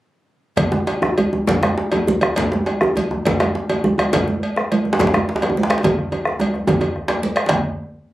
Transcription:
0.57 bombo rim soft
0.57 bombo low medium
0.57 cowbell medium
0.57 djembe slap medium
0.57 djembe bass medium
0.57 low conga medium
0.72 djembe slap medium
0.72 djembe tone medium
0.72 high conga soft
0.87 cowbell soft
0.87 djembe slap medium
1.02 bombo rim medium
1.02 djembe slap medium
1.02 djembe tone medium
1.18 bombo rim soft
1.18 cowbell soft
1.18 high conga medium
1.18 djembe bass medium
1.32 djembe slap soft
1.32 djembe tone medium
1.47 bombo low medium
1.47 cowbell soft
1.47 djembe slap medium
1.47 djembe bass medium
1.47 low conga medium
1.63 bombo rim medium
1.63 cowbell soft
1.63 djembe slap medium
1.63 high conga medium
1.78 djembe slap medium
1.78 high conga soft
1.92 cowbell soft
1.92 djembe slap medium
1.92 djembe tone medium
2.07 bombo rim soft
2.07 high conga medium
2.07 djembe bass medium
2.21 bombo rim medium
2.21 cowbell soft
2.21 djembe tone medium
2.36 bombo rim soft
2.36 bombo low medium
2.36 cowbell medium
2.36 djembe slap medium
2.36 djembe bass medium
2.36 low conga medium
2.52 djembe slap medium
2.52 djembe tone medium
2.52 high conga medium
2.66 cowbell soft
2.66 djembe slap medium
2.81 bombo rim medium
2.81 djembe slap medium
2.81 djembe tone medium
2.96 bombo rim soft
2.96 cowbell soft
2.96 high conga medium
2.96 djembe bass medium
3.11 djembe slap soft
3.11 djembe tone medium
3.25 bombo low medium
3.25 cowbell soft
3.25 djembe slap medium
3.25 low conga medium
3.25 djembe bass medium
3.40 bombo rim medium
3.40 cowbell soft
3.40 djembe slap medium
3.40 high conga medium
3.55 djembe slap medium
3.55 high conga soft
3.69 cowbell soft
3.69 djembe slap medium
3.69 djembe tone soft
3.69 djembe tone medium
3.84 bombo rim soft
3.84 high conga medium
3.84 djembe bass medium
3.98 bombo rim medium
3.98 cowbell soft
3.98 djembe tone medium
4.13 bombo rim soft
4.13 bombo low medium
4.13 cowbell medium
4.13 djembe slap medium
4.13 djembe bass medium
4.13 low conga medium
4.28 high conga medium
4.28 djembe tone medium
4.43 cowbell soft
4.56 bombo rim medium
4.56 djembe slap soft
4.72 bombo rim soft
4.72 cowbell soft
4.72 high conga medium
4.85 djembe slap soft
4.85 djembe tone medium
4.93 djembe slap medium
4.99 bombo low loud
4.99 cowbell soft
4.99 djembe slap medium
4.99 djembe bass medium
4.99 low conga medium
5.07 djembe slap medium
5.14 bombo rim medium
5.14 cowbell soft
5.14 djembe tone medium
5.14 high conga medium
5.29 djembe slap medium
5.29 high conga soft
5.36 djembe slap medium
5.42 cowbell soft
5.42 djembe slap medium
5.42 djembe tone soft
5.50 djembe tone medium
5.57 high conga medium
5.63 djembe slap medium
5.70 bombo rim medium
5.70 cowbell soft
5.70 djembe slap medium
5.78 djembe slap medium
5.84 bombo rim soft
5.84 bombo low loud
5.84 cowbell medium
5.84 djembe slap medium
5.84 djembe tone loud
5.84 low conga medium
5.84 djembe bass medium
5.99 bombo rim soft
6.12 bombo rim soft
6.12 cowbell soft
6.12 djembe slap soft
6.12 djembe tone medium
6.25 bombo rim medium
6.25 djembe slap soft
6.40 cowbell soft
6.40 djembe tone medium
6.40 high conga medium
6.54 bombo rim soft
6.54 djembe slap soft
6.54 high conga soft
6.54 djembe tone medium
6.67 bombo rim soft
6.67 bombo low loud
6.67 cowbell soft
6.67 djembe slap medium
6.67 djembe tone loud
6.67 low conga medium
6.67 djembe bass medium
6.81 cowbell soft
6.81 djembe tone loud
6.96 bombo rim soft
7.08 bombo rim soft
7.08 cowbell soft
7.08 djembe slap loud
7.10 djembe slap soft
7.10 djembe tone soft
7.23 high conga medium
7.36 bombo rim medium
7.36 cowbell soft
7.49 bombo low medium
7.49 cowbell medium
7.49 djembe slap loud
7.49 low conga medium
7.49 djembe bass medium

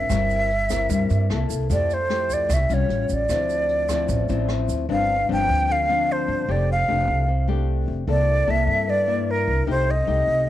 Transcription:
0.00 1.47 E5 medium
0.10 0.86 G1 medium
0.10 0.88 G3 medium
0.10 0.50 C4 soft
0.10 0.50 E4 medium
0.10 0.50 A#4 medium
0.10 kick medium
0.10 cross-stick medium
0.10 closed hi-hat medium
0.10 shaker medium
0.30 closed hi-hat soft
0.30 shaker soft
0.50 closed hi-hat soft
0.70 1.27 C4 medium
0.70 1.27 E4 medium
0.70 1.27 A#4 medium
0.70 kick soft
0.70 cross-stick medium
0.70 closed hi-hat soft
0.70 shaker medium
0.90 1.08 G2 medium
0.90 1.28 G3 medium
0.90 kick soft
0.90 closed hi-hat soft
0.90 shaker medium
1.10 1.29 G2 medium
1.10 closed hi-hat soft
1.10 shaker soft
1.30 1.49 C2 medium
1.30 1.68 A#3 soft
1.30 1.68 E4 medium
1.30 1.69 A4 medium
1.30 cross-stick medium
1.30 closed hi-hat soft
1.50 1.68 C2 medium
1.50 kick soft
1.50 closed hi-hat soft
1.50 shaker medium
1.70 2.46 F2 medium
1.70 2.48 F3 medium
1.70 1.96 A3 medium
1.70 1.96 E4 medium
1.70 1.96 G4 medium
1.70 1.95 D5 medium
1.70 kick medium
1.70 closed hi-hat medium
1.70 shaker medium
1.90 2.35 C5 medium
1.90 closed hi-hat soft
1.90 shaker soft
2.10 2.66 A3 medium
2.10 2.67 E4 medium
2.10 2.67 G4 medium
2.10 cross-stick soft
2.10 closed hi-hat soft
2.30 2.55 D5 medium
2.30 kick soft
2.30 closed hi-hat soft
2.30 shaker medium
2.49 2.68 C2 medium
2.49 2.88 C3 soft
2.49 kick soft
2.49 cross-stick medium
2.49 closed hi-hat soft
2.49 shaker medium
2.54 2.75 E5 medium
2.70 2.88 C2 medium
2.70 3.27 G3 medium
2.70 3.27 C#4 soft
2.70 3.27 F4 medium
2.70 3.15 C#5 medium
2.70 closed hi-hat soft
2.70 shaker soft
2.89 3.08 A1 medium
2.89 closed hi-hat soft
3.09 3.28 A1 medium
3.09 kick soft
3.09 closed hi-hat soft
3.09 shaker medium
3.13 4.51 D5 medium
3.29 4.05 D2 medium
3.29 4.08 D3 soft
3.29 3.86 F3 soft
3.29 3.86 C4 medium
3.29 3.87 E4 medium
3.29 kick medium
3.29 cross-stick medium
3.29 closed hi-hat medium
3.29 shaker medium
3.49 closed hi-hat soft
3.49 shaker soft
3.69 closed hi-hat soft
3.89 4.26 F3 medium
3.89 4.26 C4 medium
3.89 4.27 E4 medium
3.89 kick soft
3.89 cross-stick medium
3.89 closed hi-hat soft
3.89 shaker medium
4.09 4.28 A1 medium
4.09 4.87 A2 medium
4.09 kick soft
4.09 closed hi-hat soft
4.09 shaker medium
4.29 4.66 A1 medium
4.29 4.86 F3 medium
4.29 4.86 C4 medium
4.29 4.86 E4 medium
4.29 closed hi-hat soft
4.29 shaker soft
4.49 cross-stick medium
4.49 closed hi-hat soft
4.69 4.87 D2 medium
4.69 kick soft
4.69 closed hi-hat soft
4.69 shaker medium
4.89 5.26 G1 medium
4.89 5.67 G2 soft
4.89 5.15 F3 soft
4.89 5.15 C4 soft
4.89 5.15 D4 medium
4.89 5.28 F5 medium
5.29 5.47 G1 medium
5.29 5.86 F3 medium
5.29 5.86 C4 medium
5.29 5.86 D4 medium
5.29 5.73 G5 loud
5.49 6.25 D2 medium
5.69 6.47 D3 medium
5.69 6.13 F5 medium
5.89 6.45 F3 medium
5.89 6.46 C4 medium
5.89 6.46 D4 medium
6.12 6.53 C5 medium
6.28 6.47 G1 medium
6.49 6.86 F1 medium
6.49 7.26 F3 medium
6.49 6.74 A3 medium
6.49 6.74 D4 medium
6.49 6.75 G4 medium
6.49 6.70 D5 medium
6.72 7.46 F5 medium
6.88 7.07 F1 medium
6.88 7.28 A3 medium
6.88 7.28 D4 medium
6.88 7.28 G4 medium
7.08 7.84 C2 medium
7.28 8.06 C3 medium
7.48 8.05 A3 medium
7.48 8.05 D4 medium
7.48 8.05 G4 medium
7.88 8.06 F1 medium
8.07 8.45 C2 medium
8.07 8.86 C3 medium
8.07 8.44 A#3 medium
8.07 8.45 E4 soft
8.07 8.45 A4 medium
8.07 8.52 D5 medium
8.47 8.66 C2 medium
8.47 9.04 A#3 medium
8.47 9.04 E4 medium
8.47 9.04 A4 medium
8.47 8.91 E5 medium
8.67 9.43 G2 medium
8.87 9.65 G2 medium
8.87 9.32 D5 medium
9.07 9.64 A#3 medium
9.07 9.64 E4 medium
9.31 9.69 A#4 medium
9.47 9.66 C2 medium
9.67 10.04 C2 medium
9.67 10.45 C3 medium
9.67 9.93 A3 medium
9.67 9.93 D#4 soft
9.67 9.93 G4 medium
9.71 9.92 C5 medium
9.91 10.49 D#5 medium
10.07 10.26 C2 medium
10.07 10.49 A3 medium
10.07 10.49 D#4 medium
10.07 10.49 G4 medium
10.27 10.49 C2 medium

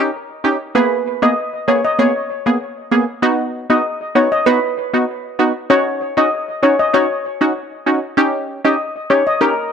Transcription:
0.00 0.10 C#4 medium
0.00 0.10 D#4 medium
0.00 0.11 G4 medium
0.44 0.57 C#4 medium
0.44 0.57 D#4 medium
0.44 0.57 G4 medium
0.75 1.18 A#3 medium
0.75 1.19 B3 medium
0.75 1.19 G#4 loud
0.75 0.89 B4 loud
1.22 1.34 A#3 medium
1.22 1.34 B3 medium
1.22 1.34 G#4 medium
1.22 1.34 D#5 medium
1.68 1.81 A#3 medium
1.68 1.81 B3 medium
1.68 1.81 G#4 medium
1.68 1.81 C#5 medium
1.85 1.96 D#5 medium
1.99 2.12 A#3 medium
1.99 2.12 B3 medium
1.99 2.12 G#4 loud
1.99 2.44 C#5 medium
2.46 2.58 A#3 medium
2.46 2.58 B3 medium
2.46 2.58 G#4 medium
2.91 3.05 A#3 medium
2.91 3.05 B3 medium
2.91 3.05 G#4 medium
3.22 3.66 B3 loud
3.22 3.66 D#4 medium
3.22 3.66 F#4 loud
3.70 3.81 B3 medium
3.70 3.81 D#4 medium
3.70 3.82 F#4 medium
3.70 3.82 D#5 medium
4.15 4.28 B3 medium
4.15 4.28 D#4 medium
4.15 4.29 F#4 medium
4.15 4.29 C#5 medium
4.32 4.44 D#5 medium
4.46 4.59 B3 medium
4.46 4.59 D#4 medium
4.46 4.60 F#4 loud
4.46 4.91 B4 loud
4.94 5.05 B3 medium
4.94 5.05 D#4 medium
4.94 5.05 F#4 medium
5.39 5.52 B3 medium
5.39 5.52 D#4 medium
5.39 5.52 F#4 medium
5.70 6.13 C#4 loud
5.70 6.14 D#4 medium
5.70 6.14 F#4 loud
5.70 5.83 C#5 loud
6.17 6.29 C#4 medium
6.17 6.29 D#4 medium
6.17 6.29 F#4 medium
6.17 6.29 D#5 medium
6.63 6.76 C#4 medium
6.63 6.76 D#4 medium
6.63 6.76 F#4 medium
6.63 6.76 C#5 medium
6.79 6.91 D#5 medium
6.94 7.07 C#4 medium
6.94 7.07 D#4 medium
6.94 7.07 F#4 loud
6.94 7.38 C#5 loud
7.41 7.53 C#4 medium
7.41 7.53 D#4 medium
7.41 7.53 F#4 medium
7.86 7.99 C#4 medium
7.86 8.00 D#4 medium
7.86 8.00 F#4 medium
8.17 8.61 C#4 loud
8.17 8.61 D#4 medium
8.17 8.61 G4 loud
8.65 8.76 C#4 medium
8.65 8.76 D#4 medium
8.65 8.77 G4 medium
8.65 8.77 D#5 medium
9.10 9.23 C#4 medium
9.10 9.23 D#4 medium
9.10 9.23 G4 medium
9.10 9.24 C#5 medium
9.27 9.39 D#5 medium
9.41 9.54 C#4 medium
9.41 9.54 D#4 medium
9.41 9.54 G4 loud
9.41 9.72 A#4 loud

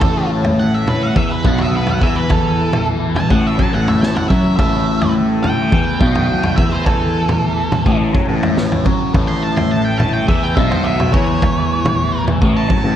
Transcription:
0.00 1.12 A1 medium
0.00 9.14 A1 medium
0.00 9.14 A2 medium
0.00 1.16 A2 loud
0.00 0.29 A4 loud
0.00 kick loud
0.00 floor tom medium
0.43 floor tom medium
0.43 high conga medium
0.60 0.74 F#5 loud
0.74 0.88 E5 medium
0.87 1.02 B4 medium
0.87 floor tom medium
0.87 mid tom medium
0.87 high conga medium
0.87 low conga medium
1.03 1.17 F#5 loud
1.16 1.43 E2 medium
1.16 1.44 E3 loud
1.16 1.30 E5 medium
1.16 kick loud
1.31 1.45 B4 medium
1.45 1.98 B1 loud
1.45 2.01 B2 loud
1.45 1.59 F#5 medium
1.45 kick loud
1.45 mid tom medium
1.58 1.75 E5 medium
1.58 floor tom medium
1.72 high conga medium
1.77 1.89 B4 loud
1.86 2.03 F#5 loud
1.86 floor tom medium
2.01 3.26 E2 medium
2.01 3.30 E3 medium
2.01 2.16 E5 loud
2.01 kick loud
2.01 low conga medium
2.16 2.31 B4 loud
2.16 high conga medium
2.30 2.86 A4 loud
2.30 kick loud
2.30 floor tom loud
2.73 floor tom medium
2.73 mid tom medium
2.73 high conga medium
3.15 3.30 A5 loud
3.15 floor tom medium
3.15 mid tom medium
3.15 low conga medium
3.30 3.57 A1 medium
3.30 3.58 A2 loud
3.30 3.47 F#5 loud
3.30 kick loud
3.47 3.60 E5 medium
3.58 3.72 F#2 medium
3.58 3.72 F#3 loud
3.58 3.73 A5 loud
3.58 kick medium
3.73 4.26 A1 medium
3.73 4.29 A2 loud
3.73 3.89 F#5 medium
3.88 4.02 E5 medium
3.88 floor tom medium
4.01 4.15 A5 loud
4.01 snare medium
4.01 high conga medium
4.15 4.28 F#5 medium
4.15 floor tom medium
4.28 4.57 F#2 loud
4.28 4.57 F#3 loud
4.28 4.55 E5 medium
4.28 kick loud
4.28 low conga medium
4.44 high conga medium
4.57 5.69 A1 medium
4.57 5.71 A2 loud
4.57 5.13 E5 loud
4.57 kick loud
4.57 floor tom medium
5.01 floor tom medium
5.01 high conga medium
5.43 6.54 G5 loud
5.43 floor tom medium
5.43 mid tom medium
5.43 high conga medium
5.43 low conga medium
5.72 5.99 E2 medium
5.72 6.00 E3 loud
5.72 kick loud
6.00 6.54 B1 loud
6.00 6.57 B2 loud
6.00 kick loud
6.00 mid tom medium
6.15 floor tom medium
6.29 high conga medium
6.43 floor tom medium
6.56 7.82 E2 medium
6.56 7.85 E3 loud
6.56 6.71 E5 loud
6.56 kick loud
6.56 low conga medium
6.72 6.85 C5 medium
6.72 high conga medium
6.86 7.97 A4 loud
6.86 kick loud
6.86 floor tom medium
6.86 low conga medium
7.29 floor tom medium
7.29 mid tom medium
7.29 high conga medium
7.72 floor tom medium
7.72 mid tom medium
7.72 high conga medium
7.72 low conga medium
7.86 8.12 A1 loud
7.86 8.14 A2 loud
7.86 kick loud
8.01 low conga medium
8.14 8.28 F#2 medium
8.14 8.28 F#3 loud
8.14 kick loud
8.28 8.82 A1 medium
8.28 8.85 A2 loud
8.43 floor tom loud
8.56 snare medium
8.56 high conga medium
8.72 floor tom medium
8.85 9.12 F#2 medium
8.85 9.13 F#3 loud
8.85 kick loud
8.85 high conga medium
8.85 low conga medium
9.01 high conga medium
9.14 10.24 A1 medium
9.14 12.96 A1 medium
9.14 10.27 A2 loud
9.14 12.96 A2 medium
9.14 kick loud
9.14 floor tom medium
9.28 9.42 C6 loud
9.43 9.57 A5 medium
9.56 9.71 C6 medium
9.56 floor tom medium
9.56 high conga medium
9.71 9.85 A5 medium
9.85 9.98 G5 medium
9.99 10.13 A5 loud
9.99 floor tom medium
9.99 mid tom medium
9.99 high conga medium
9.99 low conga medium
10.13 10.28 G5 loud
10.28 10.55 E2 medium
10.28 10.56 E3 loud
10.28 10.43 E5 medium
10.28 kick loud
10.43 10.55 G5 loud
10.55 11.10 B1 loud
10.55 11.12 B2 loud
10.55 10.70 E5 medium
10.55 kick loud
10.55 mid tom medium
10.71 10.85 C5 loud
10.71 floor tom loud
10.84 11.12 E5 loud
10.84 high conga medium
11.00 floor tom medium
11.13 12.38 E2 loud
11.13 12.41 E3 loud
11.13 12.24 C#5 loud
11.13 kick loud
11.13 low conga medium
11.27 high conga medium
11.42 kick loud
11.42 floor tom loud
11.84 floor tom medium
11.84 mid tom medium
11.84 high conga medium
12.27 floor tom medium
12.27 mid tom medium
12.27 low conga medium
12.41 12.68 A1 loud
12.41 12.69 A2 loud
12.41 kick loud
12.57 12.96 A5 loud
12.69 12.83 F#2 medium
12.69 12.83 F#3 loud
12.69 kick loud
12.84 12.96 A1 medium
12.84 12.96 A2 loud

